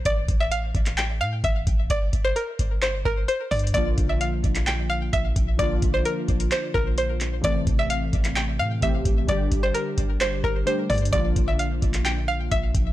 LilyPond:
<<
  \new Staff \with { instrumentName = "Synth pluck" } { \time 4/4 \key bes \lydian \tempo 4 = 130 d''8. e''16 f''4 g''8 f''8 e''8 r8 | d''8. c''16 bes'4 c''8 bes'8 c''8 d''8 | d''8. e''16 f''4 g''8 f''8 e''8 r8 | d''8. c''16 bes'4 c''8 bes'8 c''8 r8 |
d''8. e''16 f''4 g''8 f''8 e''8 r8 | d''8. c''16 bes'4 c''8 bes'8 c''8 d''8 | d''8. e''16 f''4 g''8 f''8 e''8 r8 | }
  \new Staff \with { instrumentName = "Synth keys" } { \time 4/4 \key bes \lydian r1 | r1 | <d f bes d' f'>1 | <d f bes d' f'>1 |
<c e a c'>2. <c e a c' g'>4 | <d g d' g'>2. <d g a d' g'>4 | <d f bes d' f'>1 | }
  \new Staff \with { instrumentName = "808-style bass" } { \clef bass \time 4/4 \key bes \lydian a,,8 a,,4 a,,4 a,8 a,,8 a,,8 | g,,8 g,,8 r8 g,,4 g,,8 r8 g,8 | bes,,8 bes,,4 bes,,4. bes,,8 bes,,8 | bes,,8 bes,,8 r8 bes,,8 r8 bes,,4. |
a,,8 a,,4 a,,4 a,8 a,,8 a,,8 | g,,8 g,,8 r8 g,,4 g,,8 r8 g,8 | bes,,8 bes,,4 bes,,4. bes,,8 bes,,8 | }
  \new DrumStaff \with { instrumentName = "Drums" } \drummode { \time 4/4 <hh bd>8 <hh bd>8 hh8 <hh bd>16 <hc hh>16 <hc hh>4 <hh bd>8 <hh bd>8 | <hh bd>8 <hh bd>8 hh8 <hh bd>8 <hc hh>8 bd8 \tuplet 3/2 { hh16 r16 r16 <hh hho bd>16 hh16 hh16 } | <hh bd>8 <hh bd>8 hh8 <hh bd>16 <hc hh>16 <hc hh>4 <hh bd>8 <hh bd>8 | <hh bd>8 <hh bd>8 hh8 <hh bd>16 hh16 <hc hh>8 bd8 hh8 <hc hh>8 |
<hh bd>8 <hh bd>8 hh8 <hh bd>16 <hc hh>16 <hc hh>4 <hh bd>8 <hh bd>8 | <hh bd>8 <hh bd>8 hh8 <hh bd>8 <hc hh>8 bd8 \tuplet 3/2 { hh16 r16 r16 <hh hho bd>16 hh16 hh16 } | <hh bd>8 <hh bd>8 hh8 <hh bd>16 <hc hh>16 <hc hh>4 <hh bd>8 <hh bd>8 | }
>>